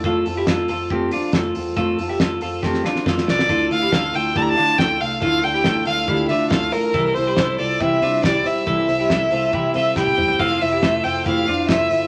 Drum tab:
CC |----------------|----------------|----------------|----------------|
HH |x-o-x-o-x-o-x-o-|x-o-x-o---------|x-o-x-o-x-o-x-o-|x-o-x-o-x-o-x-o-|
SD |----o-------o---|----o---oooooooo|----o-------o---|----o-------o---|
T1 |----------------|----------------|----------------|----------------|
T2 |----------------|----------------|----------------|----------------|
FT |----------------|----------------|----------------|----------------|
BD |o---o---o---o---|o---o---o---o---|o---o---o---o---|o---o---o---o---|

CC |----------------|----------------|x---------------|
HH |x-o-x-o-x-o-x-o-|x-o-x-o-x-o-----|--o-x-o-x-o-x-o-|
SD |----o-------o---|----o-------o---|----o-------o---|
T1 |----------------|-------------o--|----------------|
T2 |----------------|--------------o-|----------------|
FT |----------------|---------------o|----------------|
BD |o---o---o---o---|o---o---o---o---|o---o---o---o---|